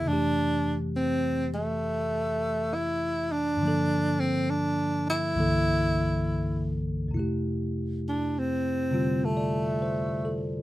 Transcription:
0.02 tine electric piano F2 C3
0.08 tine electric piano E3 A3, tenor saxophone D4
0.13 tine electric piano G4
0.96 tenor saxophone C4
1.54 tenor saxophone A3
2.74 tenor saxophone E4
3.32 tenor saxophone D4
3.57 tine electric piano G2 D3
3.62 tine electric piano F3 A#3
3.68 tine electric piano A4
4.20 tenor saxophone C4
4.50 tenor saxophone D4
5.10 tenor saxophone E4
5.35 tine electric piano C2 G2 D3 E3
5.39 tine electric piano A#3 A4
7.08 tine electric piano F2 C3
7.14 tine electric piano A3 E4
7.19 tine electric piano G4
8.09 tenor saxophone D4
8.39 tenor saxophone C4
8.92 tine electric piano C3 D3 G3 F4
9.25 tenor saxophone A3
9.37 tine electric piano D5
9.82 tine electric piano C5
10.25 tine electric piano A4

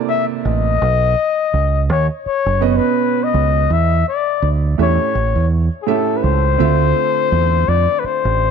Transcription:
Already playing: upright piano C3 A#3 E4 A4 D5
0.09 flugelhorn E5
0.45 fingered electric bass A1, flugelhorn D#5
0.82 fingered electric bass B1
1.54 fingered electric bass C#2
1.90 fingered electric bass D#2, flugelhorn C#5
2.26 flugelhorn C#5, muted fingered electric bass stroke
2.46 fingered electric bass F#1
2.60 upright piano B2 B3 C#4 B4 D#5
2.70 flugelhorn C#5
2.76 flugelhorn B4
3.24 flugelhorn D#5
3.34 fingered electric bass C#2
3.70 fingered electric bass E2, flugelhorn E5
4.08 flugelhorn D5
4.42 fingered electric bass D2
4.78 fingered electric bass E2, upright piano A2 A3 C#4 G4 E5, flugelhorn C#5
5.15 fingered electric bass A1
5.35 fingered electric bass E2
5.82 flugelhorn G#4
5.87 upright piano A2 A3 C#4 G4 E5, flugelhorn A4
6.17 flugelhorn B4
6.23 fingered electric bass C#2, flugelhorn C5
6.58 fingered electric bass D2, upright piano D3 A3 C4 F4 E5
7.32 fingered electric bass E2
7.68 fingered electric bass F2, flugelhorn D5
7.99 flugelhorn B4
8.04 flugelhorn C5, muted fingered electric bass stroke
8.25 fingered electric bass A1

